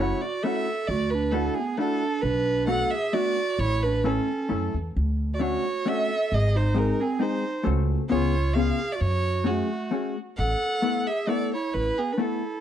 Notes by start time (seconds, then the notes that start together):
Already playing: F#1 C#5
0.00 A3 C#4 E4 F#4
0.22 F#4 D5
0.43 A3 C#4 E4 F#4 A4 E5
0.88 D2 F#4 D5
1.10 B4
1.15 D4
1.32 A3 D4 E4 F#4 A4
1.55 G#4
1.59 B3
1.78 A3 D4 E4 F#4 A4
2.22 B1 D4 B4
2.67 A3 B3 D4 F#4 F#5
2.71 A4
2.90 E5
2.95 G#4
3.13 A3 B3 D4 F#4 D5
3.59 A1 E4 C#5
3.83 D4 B4
4.04 A3 C#4 E4 A4
4.49 F#2 A3 C#4 E4 A4
4.74 E2
4.96 D2
5.34 F#4 D5
5.39 A3 C#4 D4 F#4 C#5
5.86 A3 C#4 D4 F#4 E5
5.90 A4
6.32 G#1 G#4 D#5
6.57 D#4 C5
6.75 G#3 C4 D#4 G#4 A#4
7.02 C4 G#4
7.19 G#3 C4 D#4 G#4 C5
7.24 D#4
7.63 C#2 A3 C#4 F#4 A4
8.09 C#2 B3 C#4 F4 G#4 C#5
8.54 B3 C#4 F4 G#4 F5
8.92 F#4 D5
9.01 F#2 F#4 C#5
9.44 A3 C#4 F#4 G#4
9.51 A3
9.91 A3 C#4 F#4 G#4
10.37 A1 A4 F#5
10.82 A3 B3 E4 A4
11.07 G#4 E5
11.27 A3 B3 E4 A4 D5
11.53 E4 C#5
11.74 A1 E4 B4
11.98 B3 G#4
12.12 D4 B4
12.18 A3 B3 E4 A4
12.23 E4